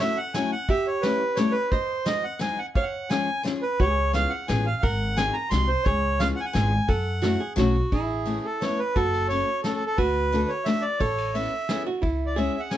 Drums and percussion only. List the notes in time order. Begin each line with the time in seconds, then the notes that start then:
0.34 snare, closed hi-hat
0.69 kick, closed hi-hat
1.03 snare, closed hi-hat
1.37 snare, closed hi-hat
1.72 kick, closed hi-hat
2.06 snare, closed hi-hat
2.41 snare, closed hi-hat
2.75 kick, closed hi-hat
3.10 snare, closed hi-hat
3.46 snare, closed hi-hat
3.80 kick, closed hi-hat
4.14 snare, closed hi-hat
4.49 snare, closed hi-hat
4.83 kick, closed hi-hat
5.17 snare, closed hi-hat
5.52 snare, closed hi-hat
5.86 kick, closed hi-hat
6.20 snare, closed hi-hat
6.55 snare, closed hi-hat
6.89 kick, closed hi-hat
7.23 snare, closed hi-hat
7.58 snare, closed hi-hat
7.92 kick, ride
8.27 ride
8.62 snare, ride
8.96 kick, ride
9.13 ride
9.30 ride
9.64 snare, ride
9.98 kick, ride
10.32 ride
10.66 snare, ride
11.01 kick, ride
11.18 ride
11.35 ride
11.69 snare, ride
12.02 kick, ride
12.37 ride
12.71 snare, ride